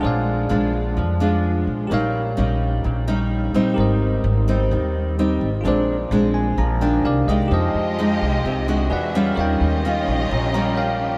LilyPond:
<<
  \new Staff \with { instrumentName = "Tine electric piano" } { \time 4/4 \key bes \mixolydian \tempo 4 = 128 << { r1 | r1 | r1 | r4. aes''8 bes''8 g''8 f''8 ees''8 |
\key f \minor r1 | r2 r8 bes''8 f''4 | } \\ { <aes' c'' d'' f''>1 | <g' bes' des'' f''>1 | <g' bes' c'' ees''>1 | <f' aes' c'' d''>2. <g' bes' d''>4 |
<g' c'' ees''>2. <gis' b' d'' fis''>4 | <bes' des'' f'' g''>2. <bes' des'' g''>4 | } >> }
  \new Staff \with { instrumentName = "Violin section" } { \time 4/4 \key bes \mixolydian r1 | r1 | r1 | r1 |
\key f \minor <aes f' g' ees''>2. <gis' e''>4 | <des' f' g' ees''>1 | }
  \new Staff \with { instrumentName = "Nylon-string guitar" } { \time 4/4 \key bes \mixolydian << { <aes d' f'>4 <aes d' f'>4. <aes d' f'>4. | <g des' ees'>8 r8 <g des' ees'>4. <g des' ees'>4 <g c' ees'>8~ | <g c' ees'>4 r8 <g c' ees'>4. <g c' ees'>8 r8 | <aes c' d'>8 r8 <aes c' d'>4 r8 <ees bes d'>4 <aes ees' g'>8~ |
\key f \minor <aes ees' g'>4 <aes ees' g'>4 r8 <aes d' ges'>4 <g des' f'>8~ | <g des' f'>4 <g des' f'>4 r8 <g des' f'>4. | } \\ { bes,2 f2 | bes,2 bes,2 | aes,2 ees2 | bes,2 f4 r4 |
f2 c4 r4 | ees2 bes,2 | } >> }
  \new Staff \with { instrumentName = "Upright bass" } { \clef bass \time 4/4 \key bes \mixolydian bes,,4 bes,,4 f,4. bes,,8 | bes,,4 bes,,4 bes,,4. bes,,8 | aes,,4 aes,,4 ees,4. aes,,8 | bes,,4 bes,,4 bes,,4 c,8 c,8 |
\key f \minor f,8 f,4 c,8 c,4 e,4 | ees,8 ees,4 bes,,8 bes,,2 | }
>>